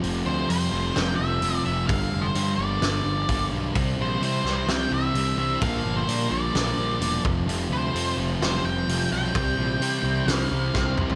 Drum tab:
HH |o---o---o---o---|o---o---o---o---|o---o---o---o---|o---o---o---o---|
SD |--------o-------|--------o-------|------o-o-------|--------o-------|
T2 |----------------|----------------|----------------|----------------|
FT |----------------|----------------|----------------|----------------|
BD |----------------|o-----------o---|o---------------|o-------------o-|

HH |o---o---o---o---|o---o---o-------|
SD |--------o-------|--------o---o---|
T2 |----------------|--------------o-|
FT |----------------|---------------o|
BD |----------------|o-----------o---|